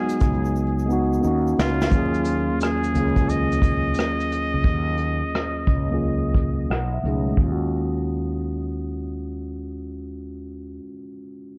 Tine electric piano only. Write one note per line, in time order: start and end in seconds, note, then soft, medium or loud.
0.00 1.25 F#3 medium
0.00 0.62 G#3 medium
0.00 0.60 B3 medium
0.00 0.61 D#4 medium
0.00 0.62 F#4 loud
0.86 1.22 G#3 medium
0.86 1.23 B3 medium
0.91 1.23 D#4 medium
0.91 1.25 F#4 loud
1.20 1.81 A#3 medium
1.20 1.82 C#4 medium
1.25 1.83 D#4 medium
1.25 1.84 F#4 medium
1.90 2.69 D#2 loud
1.90 2.70 F#3 medium
1.90 2.71 A#3 medium
1.95 2.71 C#4 loud
1.95 2.72 F4 medium
1.95 2.72 G#4 loud
2.93 3.10 D#2 medium
2.93 3.11 F#3 medium
2.93 3.11 A#3 medium
2.97 3.12 C#4 medium
2.97 3.13 F4 medium
2.97 3.14 G#4 medium
3.16 4.17 D#2 medium
3.16 4.17 F#3 medium
3.16 4.18 A#3 medium
3.16 4.19 C#4 medium
3.21 4.19 F4 medium
3.21 4.20 G#4 medium
5.88 6.68 D#2 medium
5.88 6.69 F#3 medium
5.88 6.70 A#3 medium
5.88 6.70 C#4 medium
5.93 6.71 F4 medium
5.93 6.71 G#4 medium
6.70 6.91 F#5 medium
6.94 7.35 E5 medium
7.01 7.30 B2 medium
7.01 7.31 F#3 medium
7.01 7.32 A3 medium
7.01 7.32 C#4 medium
7.06 7.33 D#4 medium
7.06 7.34 G#4 medium
7.26 10.67 G#3 medium
7.34 10.75 C#4 medium
7.43 10.84 F4 medium
7.52 10.93 F#4 medium